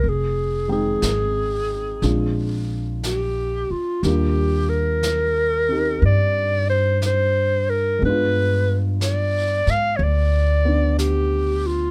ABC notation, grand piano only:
X:1
M:4/4
L:1/8
Q:"Swing" 1/4=60
K:Eb
V:1 name="Grand piano"
z [A,CEg]3 [A,CDF]4 | [G,B,DF]3 [CEG]4- [CEG] | [A,=B,DF]4- [A,B,DF] [B,D]3 |]